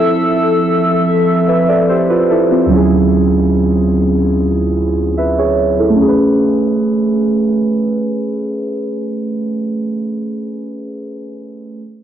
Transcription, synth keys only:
Already playing: F3 C4 E4 A4
1.48 B4 E5
1.69 A4 D5
1.89 G4 C5
2.10 F4 B4
2.31 E4 A4
2.51 C4 F4
2.66 D2 F#3
2.71 C#4 E4
2.76 G#4
5.18 B4 E5
5.38 G#4 C#5
5.79 E4 A4
5.90 A3
5.96 C#4
6.02 G#4
6.08 B4

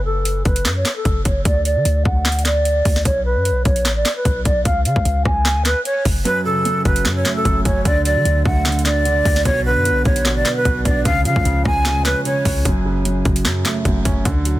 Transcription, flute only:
0.05 A4
0.45 B4
0.76 C#5
0.96 A4
1.25 C#5
1.45 D5
1.65 D5
2.05 F#5
2.45 D5
3.05 C#5
3.25 B4
3.65 C#5
3.96 D5
4.16 B4
4.45 D5
4.65 F5
4.85 F5
5.25 G#5
5.65 B4
5.85 C#5
6.25 B4
6.45 A4
6.85 B4
7.16 C#5
7.36 A4
7.65 C#5
7.85 D5
8.05 D5
8.46 F#5
8.85 D5
9.45 C#5
9.65 B4
10.05 C#5
10.36 D5
10.56 B4
10.85 D5
11.05 F5
11.25 F5
11.65 G#5
12.05 B4
12.25 C#5

